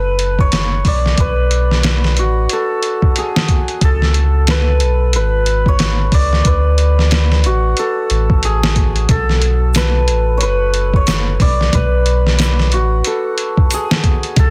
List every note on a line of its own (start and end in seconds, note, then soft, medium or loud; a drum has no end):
0.00 0.82 F#1 loud
0.00 1.49 A4 loud
0.00 1.20 B4 medium
0.19 closed hi-hat medium
0.39 0.93 C#5 loud
0.39 kick medium
0.52 snare loud
0.52 closed hi-hat medium
0.85 1.15 B1 medium
0.85 3.34 D5 medium
0.85 kick medium
0.85 open hi-hat medium
1.06 snare soft
1.18 2.19 B1 medium
1.18 3.94 B4 loud
1.18 kick loud
1.18 closed hi-hat medium
1.51 closed hi-hat medium
1.71 snare soft
1.83 snare loud
1.83 closed hi-hat medium
2.04 snare medium
2.17 2.47 A1 medium
2.17 5.44 F#4 medium
2.17 closed hi-hat medium
2.49 3.24 A4 loud
2.49 closed hi-hat medium
2.83 closed hi-hat medium
3.02 kick medium
3.16 3.90 G#4 medium
3.16 closed hi-hat medium
3.36 snare loud
3.48 kick medium
3.48 closed hi-hat medium
3.68 closed hi-hat soft
3.81 4.82 C#2 medium
3.81 6.77 A4 loud
3.81 kick loud
3.81 closed hi-hat medium
4.02 snare soft
4.14 closed hi-hat medium
4.47 5.15 B4 loud
4.47 snare loud
4.47 closed hi-hat medium
4.80 5.15 B1 medium
4.80 closed hi-hat medium
5.13 6.10 G#1 loud
5.13 6.46 B4 loud
5.13 closed hi-hat medium
5.46 closed hi-hat medium
5.66 6.20 C#5 medium
5.66 kick medium
5.79 snare loud
5.79 closed hi-hat medium
6.12 6.42 C#2 medium
6.12 8.60 D5 medium
6.12 kick medium
6.12 open hi-hat medium
6.33 snare soft
6.45 7.45 D2 loud
6.45 9.20 B4 medium
6.45 kick loud
6.45 closed hi-hat medium
6.78 closed hi-hat medium
6.99 snare soft
7.11 snare loud
7.11 closed hi-hat medium
7.32 snare medium
7.44 7.74 A1 medium
7.44 10.71 F#4 medium
7.44 closed hi-hat medium
7.77 8.51 A4 loud
7.77 closed hi-hat medium
8.10 9.06 A1 medium
8.10 closed hi-hat medium
8.30 kick medium
8.43 9.16 G#4 medium
8.43 closed hi-hat medium
8.63 snare loud
8.76 kick medium
8.76 closed hi-hat medium
8.96 closed hi-hat soft
9.09 10.10 B1 loud
9.09 12.03 A4 loud
9.09 kick loud
9.09 closed hi-hat medium
9.09 low conga medium
9.29 snare soft
9.42 closed hi-hat medium
9.74 10.42 B4 medium
9.74 snare loud
9.74 closed hi-hat medium
9.74 shaker medium
10.08 10.43 A1 medium
10.08 closed hi-hat medium
10.38 11.38 F#1 loud
10.38 10.95 C#5 medium
10.38 closed hi-hat medium
10.43 11.74 B4 loud
10.74 closed hi-hat medium
10.94 11.48 C#5 medium
10.94 kick medium
11.07 snare loud
11.07 closed hi-hat medium
11.07 shaker medium
11.40 11.70 B1 medium
11.40 13.88 D5 medium
11.40 kick medium
11.40 open hi-hat medium
11.40 low conga medium
11.61 snare soft
11.73 12.74 B1 loud
11.73 14.48 B4 loud
11.73 kick loud
11.73 closed hi-hat medium
11.73 low conga medium
12.06 closed hi-hat medium
12.27 snare soft
12.39 snare loud
12.39 closed hi-hat medium
12.39 shaker medium
12.59 snare medium
12.72 13.02 A1 medium
12.72 14.50 F#4 medium
12.72 closed hi-hat medium
13.04 13.80 A4 medium
13.04 closed hi-hat medium
13.38 closed hi-hat medium
13.57 kick medium
13.71 14.45 G#4 medium
13.71 closed hi-hat medium
13.71 shaker medium
13.91 snare loud
14.04 kick medium
14.04 closed hi-hat medium
14.23 closed hi-hat soft
14.36 14.50 C#2 loud
14.36 14.50 A4 loud
14.36 kick loud
14.36 closed hi-hat medium
14.36 low conga medium